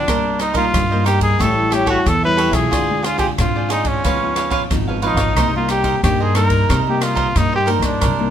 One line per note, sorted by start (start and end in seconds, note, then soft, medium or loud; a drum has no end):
0.00 0.38 D4 medium
0.08 0.64 C2 medium
0.08 0.72 C3 medium
0.08 0.53 G3 medium
0.08 0.53 A#3 medium
0.08 0.38 A#4 medium
0.08 0.39 C5 medium
0.08 kick medium
0.08 cross-stick medium
0.08 ride medium
0.39 0.52 D#4 soft
0.39 0.57 D#4 medium
0.39 0.53 A#4 medium
0.39 0.53 C5 soft
0.39 0.53 D#5 medium
0.39 cross-stick medium
0.39 ride soft
0.54 0.84 G3 medium
0.54 0.84 A#3 medium
0.54 0.65 D#4 medium
0.54 0.85 D#4 medium
0.54 1.04 F4 medium
0.54 0.65 A#4 medium
0.54 0.65 C5 medium
0.54 0.65 D#5 medium
0.54 kick medium
0.54 ride soft
0.74 1.30 G2 medium
0.74 1.37 G2 soft
0.74 kick medium
0.74 cross-stick medium
0.74 ride medium
0.91 1.36 G3 medium
0.91 1.36 A#3 medium
0.91 1.37 D#4 medium
0.91 1.04 A#4 soft
0.91 1.05 C5 soft
0.91 1.05 D#5 soft
1.04 1.38 D#4 medium
1.04 1.21 G4 medium
1.04 1.38 A#4 medium
1.04 1.38 C5 medium
1.04 1.39 D#5 medium
1.04 cross-stick medium
1.04 ride soft
1.21 1.43 G#4 medium
1.21 kick medium
1.21 ride soft
1.39 1.96 A1 medium
1.39 2.03 A2 medium
1.39 1.68 G3 medium
1.39 1.69 C#4 medium
1.39 1.69 E4 medium
1.39 1.69 G4 medium
1.39 1.70 A4 medium
1.39 1.75 A4 medium
1.39 1.70 C#5 medium
1.39 1.70 E5 medium
1.39 kick medium
1.39 cross-stick medium
1.39 ride soft
1.70 2.04 G3 medium
1.70 2.04 C#4 medium
1.70 2.05 E4 medium
1.70 1.85 G4 soft
1.70 1.89 G4 medium
1.70 1.85 A4 soft
1.70 1.86 C#5 medium
1.70 1.86 E5 medium
1.70 cross-stick medium
1.70 ride soft
1.86 2.09 F#4 medium
1.86 1.97 G4 medium
1.86 1.97 A4 medium
1.86 1.98 C#5 medium
1.86 1.98 E5 medium
1.86 kick medium
1.86 ride soft
2.06 2.48 E2 loud
2.06 2.70 E3 medium
2.06 2.24 A4 medium
2.06 kick medium
2.06 cross-stick medium
2.06 ride soft
2.23 2.52 G3 medium
2.23 2.52 C#4 medium
2.23 2.52 E4 medium
2.23 2.36 A4 soft
2.23 2.56 B4 medium
2.23 2.37 C#5 soft
2.23 2.37 E5 soft
2.37 2.53 G4 medium
2.37 2.52 A4 medium
2.37 2.51 C#5 medium
2.37 2.50 E5 medium
2.37 ride soft
2.50 2.73 B1 medium
2.50 2.89 G#3 medium
2.50 2.70 A4 soft
2.50 2.70 C#5 soft
2.50 2.69 E5 soft
2.50 kick medium
2.50 cross-stick medium
2.50 ride soft
2.54 2.90 C4 medium
2.54 2.90 F4 medium
2.54 3.06 G#4 medium
2.71 3.29 D2 loud
2.71 3.36 D3 medium
2.71 3.01 F4 medium
2.71 3.01 G#4 medium
2.71 3.02 C5 medium
2.71 3.02 D5 medium
2.71 kick medium
2.71 cross-stick medium
2.71 ride soft
2.90 3.34 G#3 medium
2.90 3.34 C4 medium
2.90 3.34 F4 medium
3.03 3.17 F4 soft
3.03 3.19 F4 medium
3.03 3.17 G#4 medium
3.03 3.17 C5 medium
3.03 3.18 D5 soft
3.03 cross-stick medium
3.03 ride soft
3.18 3.29 F4 medium
3.18 3.27 G4 medium
3.18 3.29 G#4 medium
3.18 3.29 C5 medium
3.18 3.30 D5 medium
3.18 kick medium
3.18 ride soft
3.38 3.95 G#2 medium
3.38 4.02 D3 soft
3.38 3.67 G#3 soft
3.38 3.67 C4 medium
3.38 3.70 F4 medium
3.38 3.68 F4 medium
3.38 kick medium
3.38 cross-stick medium
3.38 ride medium
3.56 3.69 G#4 soft
3.56 3.69 C5 soft
3.56 3.70 D5 soft
3.69 4.02 G#3 medium
3.69 4.02 C4 medium
3.69 3.89 D#4 medium
3.69 4.02 F4 medium
3.69 4.03 F4 medium
3.69 4.03 G#4 medium
3.69 4.03 C5 medium
3.69 4.03 D5 medium
3.69 cross-stick medium
3.69 ride medium
3.85 4.77 C#4 medium
3.85 kick medium
3.85 ride soft
4.04 4.61 C#2 medium
4.04 4.68 C#3 medium
4.04 4.17 F3 medium
4.04 4.17 B3 medium
4.04 4.17 D#4 medium
4.04 4.35 F4 medium
4.04 4.36 B4 medium
4.04 4.36 C#5 medium
4.04 4.37 F5 medium
4.04 kick medium
4.04 cross-stick medium
4.04 ride soft
4.22 4.66 F3 medium
4.22 4.66 B3 medium
4.22 4.66 D#4 medium
4.36 4.49 F4 soft
4.36 4.50 B4 soft
4.36 4.50 C#5 medium
4.36 4.51 F5 medium
4.36 cross-stick medium
4.36 ride soft
4.50 4.62 F4 medium
4.50 4.62 B4 medium
4.50 4.62 C#5 medium
4.50 4.62 F5 medium
4.50 kick medium
4.50 ride soft
4.71 5.13 G#1 medium
4.71 5.34 G#2 medium
4.71 4.99 F3 medium
4.71 4.99 B3 soft
4.71 4.99 D#4 medium
4.71 kick medium
4.71 cross-stick medium
4.71 ride soft
4.88 5.02 B4 soft
4.88 5.02 C#5 soft
4.88 5.02 F5 soft
5.02 5.34 F3 medium
5.02 5.34 B3 medium
5.02 5.34 D#4 medium
5.02 5.18 F4 medium
5.02 5.16 B4 medium
5.02 5.16 C#5 medium
5.02 5.15 F5 medium
5.02 ride soft
5.06 5.51 D#4 medium
5.15 5.37 G#1 medium
5.15 5.34 B4 soft
5.15 5.34 C#5 soft
5.15 5.34 F5 soft
5.15 kick medium
5.15 cross-stick medium
5.15 ride soft
5.36 5.93 C2 loud
5.36 6.00 C3 medium
5.36 5.47 G3 medium
5.36 5.47 A#3 medium
5.36 5.67 D#4 medium
5.36 5.47 D#4 medium
5.36 5.68 A#4 medium
5.36 5.68 C5 medium
5.36 5.69 D#5 medium
5.36 kick medium
5.36 cross-stick medium
5.36 ride soft
5.55 5.99 G3 medium
5.55 5.99 A#3 medium
5.55 5.99 D#4 medium
5.55 5.70 F4 medium
5.68 5.83 D#4 soft
5.68 6.01 G4 medium
5.68 5.83 A#4 medium
5.68 5.83 C5 medium
5.68 5.83 D#5 medium
5.68 cross-stick medium
5.68 ride soft
5.84 5.94 D#4 medium
5.84 5.94 A#4 medium
5.84 5.95 C5 medium
5.84 5.95 D#5 medium
5.84 kick medium
5.84 ride soft
6.03 6.66 G2 soft
6.03 6.60 G2 medium
6.03 6.31 G3 medium
6.03 6.31 A#3 medium
6.03 6.31 D#4 medium
6.03 6.24 G4 medium
6.03 kick medium
6.03 cross-stick medium
6.03 ride medium
6.20 6.36 G#4 medium
6.20 6.34 A#4 soft
6.20 6.35 C5 soft
6.20 6.35 D#5 soft
6.35 6.80 G3 medium
6.35 6.80 A#3 medium
6.35 6.68 D#4 medium
6.35 6.81 D#4 medium
6.35 6.68 A#4 medium
6.35 6.83 A#4 medium
6.35 6.68 C5 medium
6.35 6.68 D#5 medium
6.35 cross-stick medium
6.35 ride soft
6.50 kick medium
6.50 ride soft
6.69 7.33 C3 medium
6.69 7.26 C3 loud
6.69 6.99 D#4 medium
6.69 7.00 A#4 medium
6.69 7.00 C5 medium
6.69 7.01 D#5 medium
6.69 kick medium
6.69 cross-stick medium
6.69 ride soft
6.86 7.31 G3 medium
6.86 7.31 A#3 medium
6.86 7.31 D#4 medium
6.86 7.05 G4 medium
7.00 7.14 D#4 soft
7.00 7.39 F4 medium
7.00 7.15 A#4 soft
7.00 7.15 C5 medium
7.00 7.15 D#5 medium
7.00 cross-stick medium
7.00 ride medium
7.15 7.26 D#4 medium
7.15 7.27 A#4 medium
7.15 7.27 C5 medium
7.15 7.27 D#5 medium
7.15 kick medium
7.15 ride soft
7.36 7.78 G2 medium
7.36 7.99 G2 medium
7.36 7.56 G3 medium
7.36 7.56 A#3 medium
7.36 7.56 D#4 medium
7.36 7.53 D#4 medium
7.36 kick medium
7.36 cross-stick medium
7.36 ride soft
7.52 7.70 G4 medium
7.52 7.65 A#4 soft
7.52 7.66 C5 soft
7.52 7.66 D#5 soft
7.66 8.12 G3 medium
7.66 8.13 A#3 medium
7.66 7.83 D#4 medium
7.66 8.13 D#4 medium
7.66 7.81 A#4 medium
7.66 7.81 C5 medium
7.66 7.80 D#5 medium
7.66 ride soft
7.79 8.03 G2 medium
7.79 7.99 A#4 soft
7.79 7.99 D#5 soft
7.79 kick medium
7.79 cross-stick medium
7.79 ride soft
7.86 8.30 D4 medium
8.01 8.30 C2 medium
8.01 8.30 C3 medium
8.01 8.30 A#4 medium
8.01 8.30 C5 medium
8.01 kick medium
8.01 cross-stick medium
8.01 ride medium
8.19 8.30 G3 medium
8.19 8.30 A#3 medium
8.19 8.30 D#4 medium